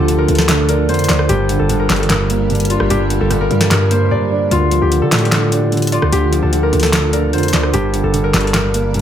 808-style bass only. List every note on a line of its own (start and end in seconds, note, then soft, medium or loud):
0.00 0.27 D2 loud
0.28 0.90 D2 loud
0.89 1.08 F2 loud
1.09 1.28 D2 loud
1.29 1.58 G1 loud
1.59 1.88 G1 loud
1.90 2.77 G1 loud
2.80 2.90 G1 loud
2.90 3.19 G1 loud
3.20 3.49 G1 loud
3.51 4.09 G2 loud
4.51 4.80 D2 loud
4.82 5.03 D2 loud
5.02 5.11 D3 loud
5.12 5.99 A2 loud
6.02 6.12 D2 loud
6.12 6.41 D2 loud
6.43 6.72 D2 loud
6.73 7.35 D2 loud
7.33 7.52 F2 loud
7.53 7.73 D2 loud
7.73 8.02 G1 loud
8.04 8.33 G1 loud
8.34 9.01 G1 loud